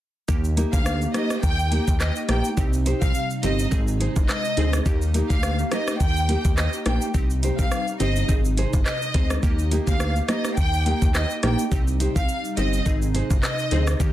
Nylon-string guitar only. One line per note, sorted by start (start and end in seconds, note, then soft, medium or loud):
0.57 0.78 A#3 medium
0.57 0.78 D#4 medium
0.57 0.79 G4 medium
1.14 1.35 A#3 medium
1.14 1.35 D#4 medium
1.14 1.36 G4 medium
1.71 1.92 A#3 medium
1.71 1.92 D#4 medium
1.71 1.93 G4 medium
2.28 2.49 A#3 medium
2.28 2.50 D#4 loud
2.28 2.50 G4 medium
2.85 3.06 D#4 medium
2.85 3.07 G4 loud
2.85 3.07 C5 loud
3.43 3.63 D#4 medium
3.43 3.64 G4 medium
3.43 3.64 C5 medium
4.00 4.21 D#4 medium
4.00 4.21 G#4 medium
4.00 4.21 C5 medium
4.57 4.78 D#4 loud
4.57 4.78 G#4 loud
4.57 4.79 C5 loud
5.14 5.35 A#3 medium
5.14 5.35 D#4 medium
5.14 5.36 G4 medium
5.71 5.92 A#3 medium
5.71 5.92 D#4 medium
5.71 5.93 G4 loud
6.28 6.49 A#3 medium
6.28 6.50 D#4 medium
6.28 6.50 G4 medium
6.86 7.06 A#3 medium
6.86 7.07 D#4 medium
6.86 7.07 G4 loud
7.43 7.64 D#4 medium
7.43 7.64 G4 loud
7.43 7.64 C5 loud
8.00 8.21 D#4 medium
8.00 8.21 G4 medium
8.00 8.21 C5 loud
8.57 8.78 D#4 medium
8.57 8.78 G#4 loud
8.57 8.79 C5 loud
9.14 9.35 D#4 medium
9.14 9.35 G#4 medium
9.14 9.36 C5 medium
9.71 9.92 A#3 medium
9.71 9.92 D#4 medium
9.71 9.93 G4 loud
10.28 10.49 A#3 medium
10.28 10.50 D#4 medium
10.28 10.50 G4 medium
10.85 11.06 A#3 medium
10.85 11.07 D#4 medium
10.85 11.07 G4 medium
11.43 11.64 A#3 medium
11.43 11.64 D#4 medium
11.43 11.64 G4 medium
12.00 12.21 D#4 medium
12.00 12.21 G4 loud
12.00 12.21 C5 medium
12.57 12.78 D#4 medium
12.57 12.78 G4 medium
12.57 12.79 C5 medium
13.14 13.35 D#4 medium
13.14 13.35 G#4 medium
13.14 13.36 C5 loud
13.71 13.92 D#4 medium
13.71 13.92 G#4 loud
13.71 13.93 C5 loud